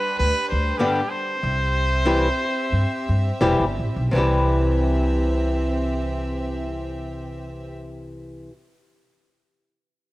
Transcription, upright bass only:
0, 0, Header, 1, 2, 480
1, 0, Start_track
1, 0, Key_signature, 0, "major"
1, 0, Tempo, 617284
1, 1106, Time_signature, 4, 2, 24, 8
1, 1599, Tempo, 675676
1, 2559, Tempo, 722022
1, 7025, End_track
2, 0, Start_track
2, 0, Title_t, "Upright bass"
2, 0, Program_c, 0, 32
2, 152, Note_on_c, 0, 38, 89
2, 233, Note_off_c, 0, 38, 0
2, 405, Note_on_c, 0, 38, 84
2, 547, Note_off_c, 0, 38, 0
2, 1114, Note_on_c, 0, 36, 90
2, 1750, Note_off_c, 0, 36, 0
2, 2073, Note_on_c, 0, 43, 79
2, 2156, Note_off_c, 0, 43, 0
2, 2332, Note_on_c, 0, 43, 86
2, 2480, Note_off_c, 0, 43, 0
2, 2559, Note_on_c, 0, 28, 78
2, 2673, Note_off_c, 0, 28, 0
2, 2684, Note_on_c, 0, 31, 74
2, 2800, Note_off_c, 0, 31, 0
2, 2814, Note_on_c, 0, 33, 71
2, 2914, Note_off_c, 0, 33, 0
2, 2928, Note_on_c, 0, 35, 75
2, 3028, Note_off_c, 0, 35, 0
2, 3039, Note_on_c, 0, 36, 83
2, 5917, Note_off_c, 0, 36, 0
2, 7025, End_track
0, 0, End_of_file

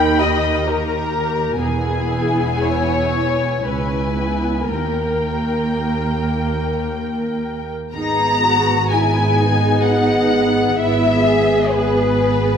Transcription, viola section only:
0, 0, Header, 1, 2, 480
1, 0, Start_track
1, 0, Key_signature, 5, "minor"
1, 0, Tempo, 937500
1, 824, Time_signature, 3, 2, 24, 8
1, 824, Tempo, 1016949
1, 1784, Tempo, 1060071
1, 2264, Tempo, 1115242
1, 2744, Tempo, 1056338
1, 3704, Tempo, 952381
1, 5144, Tempo, 920245
1, 6075, End_track
2, 0, Start_track
2, 0, Title_t, "Viola section"
2, 0, Program_c, 0, 48
2, 0, Note_on_c, 0, 63, 51
2, 0, Note_on_c, 0, 70, 48
2, 98, Note_off_c, 0, 63, 0
2, 98, Note_on_c, 0, 67, 48
2, 337, Note_off_c, 0, 67, 0
2, 342, Note_off_c, 0, 70, 0
2, 343, Note_on_c, 0, 67, 45
2, 344, Note_off_c, 0, 67, 0
2, 344, Note_on_c, 0, 67, 44
2, 815, Note_off_c, 0, 67, 0
2, 822, Note_on_c, 0, 64, 46
2, 824, Note_on_c, 0, 59, 46
2, 1765, Note_off_c, 0, 64, 0
2, 1766, Note_off_c, 0, 59, 0
2, 1783, Note_on_c, 0, 61, 38
2, 1783, Note_on_c, 0, 64, 38
2, 2014, Note_off_c, 0, 61, 0
2, 2020, Note_on_c, 0, 59, 36
2, 2254, Note_off_c, 0, 64, 0
2, 2260, Note_on_c, 0, 58, 39
2, 2260, Note_on_c, 0, 70, 34
2, 2265, Note_off_c, 0, 59, 0
2, 3587, Note_off_c, 0, 70, 0
2, 3605, Note_off_c, 0, 58, 0
2, 3710, Note_on_c, 0, 59, 46
2, 3711, Note_on_c, 0, 68, 46
2, 4179, Note_off_c, 0, 59, 0
2, 4180, Note_off_c, 0, 68, 0
2, 4201, Note_on_c, 0, 68, 47
2, 4203, Note_on_c, 0, 59, 49
2, 5129, Note_off_c, 0, 68, 0
2, 5130, Note_off_c, 0, 59, 0
2, 5152, Note_on_c, 0, 59, 49
2, 5153, Note_on_c, 0, 68, 44
2, 5625, Note_off_c, 0, 59, 0
2, 5626, Note_off_c, 0, 68, 0
2, 5639, Note_on_c, 0, 59, 47
2, 5640, Note_on_c, 0, 68, 47
2, 6075, Note_off_c, 0, 59, 0
2, 6075, Note_off_c, 0, 68, 0
2, 6075, End_track
0, 0, End_of_file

